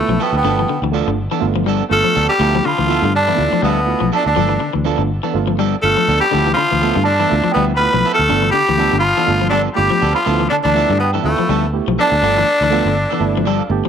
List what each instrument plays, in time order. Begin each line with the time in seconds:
Already playing: baritone saxophone A2, reed electric piano A3 B3 E4 F4, tenor saxophone A3, celesta F5
0.08 fingered electric bass B1, clean electric guitar F3
0.20 baritone saxophone B2, clean electric guitar F3 B3 E4 A4, tenor saxophone B3, celesta G5
0.33 fingered electric bass D2, baritone saxophone B2
0.37 tenor saxophone B3, celesta G5
0.44 fingered electric bass G1, clean electric guitar D3 F3 B3 D4 A4, reed electric piano A3 B3 D4 F4
0.59 clean electric guitar E3
0.69 clean electric guitar D3
0.82 fingered electric bass D2, clean electric guitar E3
0.92 clean electric guitar F3 B3 D4 A4, reed electric piano A3 B3 D4 F4
1.07 fingered electric bass G1, clean electric guitar D3
1.31 clean electric guitar E3 B3 D4 A4
1.40 fingered electric bass G1, reed electric piano A3 B3 D4 F4
1.56 clean electric guitar F3
1.66 clean electric guitar F3 G3 B3 D4 A4
1.89 fingered electric bass G1, reed electric piano A3 B3 D4 F4, baritone saxophone A3, tenor saxophone A4, celesta F6
2.04 clean electric guitar F3
2.15 fingered electric bass D2, clean electric guitar F3 B3 D4 A4
2.29 baritone saxophone G3, tenor saxophone G4, celesta D6
2.39 fingered electric bass D2, clean electric guitar F3 B3 E4 A4, reed electric piano A3 B3 E4 F4, muted clean electric guitar stroke
2.55 clean electric guitar F3
2.65 clean electric guitar D3, baritone saxophone F3, tenor saxophone F4, celesta B5
2.78 fingered electric bass D2, clean electric guitar E3
2.87 clean electric guitar F3 B3 E4 A4, reed electric piano A3 B3 E4 F4
3.02 fingered electric bass G2, clean electric guitar D3
3.14 baritone saxophone D3, tenor saxophone D4, celesta A5
3.27 clean electric guitar E3 B3 E4, muted clean electric guitar stroke
3.35 fingered electric bass D2, reed electric piano A3 B3 E4 F4
3.53 clean electric guitar F3
3.62 fingered electric bass D2, baritone saxophone B2, clean electric guitar F3 G3 B3 E4 A4, tenor saxophone B3
3.66 celesta F5
3.85 reed electric piano A3 B3 E4 F4
4.00 fingered electric bass B1, clean electric guitar F3
4.12 baritone saxophone D3, clean electric guitar F3 B3 E4 A4, tenor saxophone D4, celesta A5
4.25 fingered electric bass D2, baritone saxophone D3, tenor saxophone D4, celesta A5
4.35 fingered electric bass G1, clean electric guitar F3 B3 D4 A4, reed electric piano A3 B3 D4 F4
4.49 clean electric guitar E3
4.60 clean electric guitar D3
4.73 fingered electric bass D2, clean electric guitar E3
4.84 clean electric guitar F3 B3 D4 A4, reed electric piano A3 B3 D4 F4
4.98 fingered electric bass G1, clean electric guitar D3
5.23 clean electric guitar E3 B3 D4 A4
5.34 fingered electric bass G1, reed electric piano A3 B3 D4 F4
5.47 clean electric guitar F3
5.59 clean electric guitar F3 G3 B3 D4 A4
5.82 fingered electric bass G1, baritone saxophone A3, reed electric piano A3 B3 D4 F4, tenor saxophone A4, celesta F6
5.97 clean electric guitar F3
6.08 fingered electric bass D2, clean electric guitar F3 B3 D4 A4
6.19 baritone saxophone G3, tenor saxophone G4, celesta D6
6.31 fingered electric bass D2, clean electric guitar D3 F3 B3 E4 A4, reed electric piano A3 B3 E4 F4
6.47 clean electric guitar E3
6.53 clean electric guitar D3, baritone saxophone F3, tenor saxophone F4, celesta B5
6.71 fingered electric bass D2, clean electric guitar E3
6.81 clean electric guitar F3 B3 E4 A4, reed electric piano A3 B3 E4 F4
6.95 fingered electric bass G2, clean electric guitar D3
7.03 baritone saxophone D3, tenor saxophone D4, celesta A5
7.19 clean electric guitar E3 B3 E4 A4
7.30 fingered electric bass D2, reed electric piano A3 B3 E4 F4
7.44 clean electric guitar F3
7.50 baritone saxophone B2, tenor saxophone B3, celesta G5
7.56 fingered electric bass D2, clean electric guitar F3 G3 B3 E4
7.74 baritone saxophone B3, tenor saxophone B4, celesta F6
7.79 reed electric piano A3 B3 E4 F4
7.94 fingered electric bass B1, clean electric guitar F3
8.05 clean electric guitar F3 B3 E4 A4
8.13 baritone saxophone A3, tenor saxophone A4, celesta F6
8.19 fingered electric bass D2
8.28 fingered electric bass G1, clean electric guitar D3 F3 B3 D4 A4, reed electric piano A3 B3 D4 F4
8.42 clean electric guitar E3
8.49 baritone saxophone G3, tenor saxophone G4, celesta D6
8.53 clean electric guitar D3
8.69 fingered electric bass D2, clean electric guitar E3
8.76 clean electric guitar F3 B3 D4 A4, reed electric piano A3 B3 D4 F4
8.92 fingered electric bass G1, clean electric guitar D3
8.97 baritone saxophone F3, tenor saxophone F4, celesta B5
9.17 clean electric guitar E3 B3 D4 A4
9.26 fingered electric bass G1, reed electric piano A3 B3 D4 F4
9.41 clean electric guitar F3
9.49 baritone saxophone D3, clean electric guitar F3 G3 B3, tenor saxophone D4, celesta A5
9.53 clean electric guitar D4 A4
9.73 baritone saxophone G3, reed electric piano A3 B3 D4 F4, tenor saxophone G4, celesta D6
9.78 fingered electric bass G1
9.90 clean electric guitar F3
10.01 fingered electric bass D2, clean electric guitar F3 B3 D4 A4
10.11 baritone saxophone F3, tenor saxophone F4, celesta B5
10.25 fingered electric bass D2, clean electric guitar F3 B3 E4 A4, reed electric piano A3 B3 E4 F4, muted clean electric guitar stroke
10.40 clean electric guitar E3
10.48 baritone saxophone D3, clean electric guitar D3, tenor saxophone D4
10.53 celesta A5
10.63 fingered electric bass D2, baritone saxophone D3, clean electric guitar E3, tenor saxophone D4
10.68 celesta A5
10.73 clean electric guitar F3 B3 E4 A4, reed electric piano A3 B3 E4 F4
10.90 fingered electric bass G2, clean electric guitar D3
10.98 baritone saxophone B2, tenor saxophone B3
11.03 celesta G5
11.14 clean electric guitar E3 B3 E4 A4
11.23 fingered electric bass D2, baritone saxophone A2, reed electric piano A3 B3 E4 F4, tenor saxophone A3
11.29 celesta F5
11.39 clean electric guitar F3, muted fingered electric bass stroke
11.49 fingered electric bass D2, clean electric guitar F3 G3 B3 E4 A4
11.73 reed electric piano A3 B3 E4 G4
11.88 fingered electric bass B1, clean electric guitar F3
11.99 baritone saxophone D3, clean electric guitar F3 B3 E4 A4, tenor saxophone D4, celesta A5
12.12 fingered electric bass D2
12.21 fingered electric bass G1, clean electric guitar D3 F3 B3 A4, reed electric piano A3 B3 D4 F4, muted clean electric guitar stroke
12.38 clean electric guitar E3
12.61 fingered electric bass D2, clean electric guitar E3
12.70 clean electric guitar F3 B3 D4, reed electric piano A3 B3 D4 F4
12.85 fingered electric bass G1, clean electric guitar D3
13.10 clean electric guitar E3 B3 D4 A4
13.20 fingered electric bass G1, reed electric piano A3 B3 D4 E4
13.37 clean electric guitar F3
13.45 clean electric guitar F3 G3 D4 A4, reed electric piano D5, muted clean electric guitar stroke
13.59 reed electric piano F5
13.70 fingered electric bass G1, reed electric piano A3 B3 D4 G4 A5
13.85 clean electric guitar F3